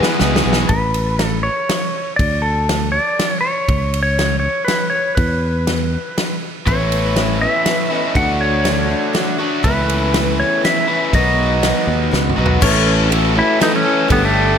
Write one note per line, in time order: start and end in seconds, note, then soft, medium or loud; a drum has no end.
0.00 0.46 E2 medium
0.00 0.45 B2 medium
0.00 0.18 E3 soft
0.00 0.19 G#3 medium
0.00 0.20 B3 medium
0.00 0.14 E4 medium
0.00 0.14 F#4 medium
0.00 0.19 F#4 medium
0.00 0.14 G#4 medium
0.00 0.21 G#4 medium
0.00 0.41 B4 medium
0.00 snare medium
0.19 0.43 C#2 medium
0.19 0.45 E3 medium
0.19 0.45 G#3 medium
0.19 0.45 B3 medium
0.19 0.63 E4 medium
0.19 0.63 F#4 medium
0.19 0.43 F#4 medium
0.19 0.63 G#4 medium
0.19 0.43 G#4 medium
0.19 snare medium
0.36 snare loud
0.44 0.68 B1 medium
0.44 0.69 E2 medium
0.44 0.69 B2 medium
0.44 0.71 E3 soft
0.44 0.71 G#3 soft
0.44 0.70 B3 soft
0.44 0.70 F#4 medium
0.44 0.68 G#4 loud
0.53 snare medium
0.69 1.48 A1 medium
0.69 1.26 B4 medium
0.69 kick loud
0.69 ride medium
0.94 ride medium
1.19 snare medium
1.19 ride medium
1.26 1.46 A4 medium
1.43 2.16 C#5 medium
1.69 snare medium
1.69 ride medium
2.16 2.97 D2 medium
2.16 2.41 D5 medium
2.16 kick loud
2.16 ride medium
2.42 2.89 A4 medium
2.69 snare medium
2.69 ride medium
2.92 3.40 D5 medium
3.19 snare medium
3.19 ride medium
3.41 4.00 C#5 loud
3.69 4.47 C#2 loud
3.69 kick loud
3.69 ride medium
3.94 ride medium
4.03 4.38 C#5 medium
4.19 snare medium
4.19 ride medium
4.40 4.67 C#5 medium
4.65 4.92 B4 medium
4.65 snare medium
4.65 ride medium
4.90 5.14 C#5 medium
5.15 5.96 E2 medium
5.15 6.37 B4 medium
5.15 kick loud
5.15 ride medium
5.67 snare medium
5.67 ride medium
6.18 snare medium
6.18 ride medium
6.66 7.45 A1 medium
6.66 7.16 A2 medium
6.66 7.15 E3 medium
6.66 7.91 A3 medium
6.66 7.16 B3 medium
6.66 7.17 C#4 medium
6.66 7.17 E4 medium
6.66 7.38 C#5 medium
6.66 kick loud
6.66 ride medium
6.92 ride medium
7.16 7.41 E3 medium
7.16 7.42 B3 medium
7.16 7.41 C#4 medium
7.16 7.39 E4 medium
7.16 snare medium
7.16 ride medium
7.40 7.65 B3 soft
7.40 7.66 C#4 soft
7.40 7.65 E4 soft
7.40 7.94 E5 medium
7.65 7.91 E3 medium
7.65 7.91 B3 medium
7.65 7.91 C#4 medium
7.65 7.90 E4 medium
7.65 snare medium
7.65 ride medium
7.91 8.15 A2 medium
7.91 8.14 E3 medium
7.91 8.16 A3 medium
7.91 8.16 B3 soft
7.91 8.17 C#4 soft
7.91 8.16 E4 soft
7.91 8.18 D#5 medium
8.15 8.93 D2 medium
8.15 8.63 D3 medium
8.15 8.65 A3 medium
8.15 8.66 D4 medium
8.15 8.66 F#4 medium
8.15 8.42 F#5 loud
8.15 kick loud
8.15 ride medium
8.41 9.36 C#5 medium
8.64 8.89 D3 medium
8.64 8.90 A3 medium
8.64 8.89 D4 medium
8.64 8.88 F#4 medium
8.64 snare medium
8.64 ride medium
8.89 9.14 A3 soft
8.89 9.15 D4 soft
8.89 9.14 F#4 soft
9.13 9.39 D3 medium
9.13 9.40 A3 medium
9.13 9.39 D4 medium
9.13 9.37 F#4 medium
9.13 snare medium
9.13 ride medium
9.38 9.62 A3 soft
9.38 9.64 D4 soft
9.38 9.64 F#4 medium
9.42 9.64 D3 medium
9.63 10.42 C#2 loud
9.63 10.13 C#3 medium
9.63 10.12 E3 medium
9.63 10.13 A3 medium
9.63 10.16 B3 medium
9.63 10.87 C#4 medium
9.63 10.14 E4 medium
9.63 10.35 B4 medium
9.63 kick loud
9.63 ride medium
9.89 ride medium
10.14 10.62 E3 medium
10.14 10.63 A3 medium
10.14 10.64 B3 medium
10.14 10.65 E4 medium
10.14 snare medium
10.14 ride medium
10.40 10.65 C#5 medium
10.63 11.13 E3 medium
10.63 11.14 A3 medium
10.63 11.14 B3 medium
10.63 11.15 E4 medium
10.63 11.14 E5 loud
10.63 snare medium
10.63 ride medium
10.87 11.12 C#3 medium
10.87 11.12 E3 medium
10.87 11.12 A3 medium
10.87 11.12 C#4 medium
10.87 11.11 E4 medium
11.13 11.71 B1 medium
11.13 11.63 B2 medium
11.13 11.61 D#3 medium
11.13 12.35 F#3 medium
11.13 11.62 G#3 medium
11.13 11.63 B3 medium
11.13 12.36 D#4 medium
11.13 11.64 F#4 medium
11.13 12.09 D#5 medium
11.13 kick loud
11.13 ride medium
11.62 12.10 D#3 medium
11.62 12.11 G#3 medium
11.62 12.12 B3 medium
11.62 12.13 F#4 medium
11.62 snare medium
11.62 ride medium
11.87 12.10 D#2 medium
12.11 12.35 C#2 medium
12.11 12.37 D#3 medium
12.11 12.37 G#3 medium
12.11 12.37 B3 medium
12.11 12.35 F#4 medium
12.11 snare medium
12.29 mid tom medium
12.36 12.60 B1 medium
12.36 12.61 B2 medium
12.36 12.61 F#3 medium
12.36 12.62 G#3 soft
12.36 12.62 B3 soft
12.36 12.60 D#4 medium
12.36 12.61 F#4 medium
12.46 floor tom medium
12.61 13.40 A1 loud
12.61 13.11 A2 medium
12.61 13.08 E3 medium
12.61 13.05 A3 medium
12.61 13.11 A3 medium
12.61 13.08 C#4 loud
12.61 13.05 C#4 medium
12.61 13.11 C#4 medium
12.61 13.05 E4 medium
12.61 13.12 E4 medium
12.61 13.05 A4 medium
12.61 12.86 A4 loud
12.61 kick loud
12.61 crash loud
12.86 13.11 A3 medium
12.86 13.11 C#4 medium
12.86 13.13 A4 medium
13.10 13.35 E3 medium
13.10 13.54 A3 medium
13.10 13.36 A3 medium
13.10 13.54 C#4 medium
13.10 13.36 C#4 medium
13.10 13.54 E4 medium
13.10 13.34 E4 medium
13.10 13.54 F#4 medium
13.10 ride medium
13.14 13.34 A4 medium
13.35 13.86 A2 medium
13.35 13.58 E3 medium
13.35 13.59 A3 soft
13.35 13.61 C#4 soft
13.35 13.60 E4 soft
13.35 13.62 E4 loud
13.35 13.63 A4 medium
13.60 14.08 E3 medium
13.60 14.10 A3 medium
13.60 14.04 A3 medium
13.60 14.04 C#4 medium
13.60 14.10 C#4 medium
13.60 13.74 D#4 loud
13.60 14.04 E4 medium
13.60 14.11 E4 medium
13.60 14.04 A4 medium
13.60 13.84 A4 medium
13.60 snare medium
13.60 ride medium
13.76 14.12 C#4 loud
13.84 14.10 A2 medium
13.84 14.08 E3 medium
13.84 14.10 A3 medium
13.84 14.08 C#4 medium
13.84 14.11 A4 loud
14.08 14.58 G1 loud
14.08 14.57 G3 medium
14.08 14.58 A3 medium
14.08 14.53 A3 medium
14.08 14.24 B3 medium
14.08 14.53 D4 medium
14.08 14.58 D4 medium
14.08 14.53 G4 medium
14.08 14.58 G4 medium
14.08 14.53 A4 loud
14.08 kick loud
14.08 ride medium
14.25 14.58 A3 loud
14.34 14.58 A3 medium
14.34 14.58 D4 medium
14.34 14.58 G4 medium